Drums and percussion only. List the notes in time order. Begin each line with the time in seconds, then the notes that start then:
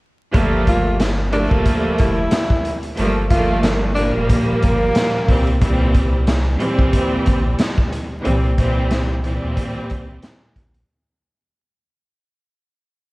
0.34 kick, closed hi-hat
0.67 kick, closed hi-hat
0.99 snare, closed hi-hat
1.33 closed hi-hat
1.51 kick
1.66 kick, closed hi-hat
1.99 kick, closed hi-hat
2.31 snare, closed hi-hat
2.50 kick
2.65 closed hi-hat
2.83 closed hi-hat
2.98 closed hi-hat
3.31 kick, closed hi-hat
3.63 snare, closed hi-hat
3.96 closed hi-hat
4.29 kick, closed hi-hat
4.62 kick, closed hi-hat
4.95 snare, closed hi-hat
5.28 kick, open hi-hat
5.47 closed hi-hat
5.61 kick, closed hi-hat
5.94 kick, closed hi-hat
6.27 snare, closed hi-hat
6.60 closed hi-hat
6.79 kick
6.93 kick, closed hi-hat
7.26 kick, closed hi-hat
7.59 snare, closed hi-hat
7.78 kick
7.92 closed hi-hat
8.25 closed hi-hat
8.58 kick, closed hi-hat
8.91 snare, closed hi-hat
9.24 closed hi-hat
9.57 kick, closed hi-hat
9.90 kick, closed hi-hat
10.22 snare, closed hi-hat
10.56 kick, closed hi-hat
10.74 closed hi-hat